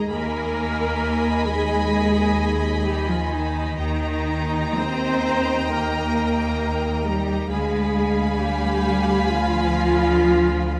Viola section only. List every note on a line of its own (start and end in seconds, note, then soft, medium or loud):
0.00 0.10 G#4 medium
0.10 1.47 A#4 medium
1.48 2.86 G#4 medium
2.86 3.08 G4 medium
3.09 3.32 F4 medium
3.32 3.77 D#4 medium
3.78 4.76 D#4 medium
4.78 5.71 C5 loud
5.73 7.07 A#4 medium
7.07 7.51 G4 medium
7.52 8.37 G#4 medium
8.40 9.25 G4 medium
9.27 10.80 F4 loud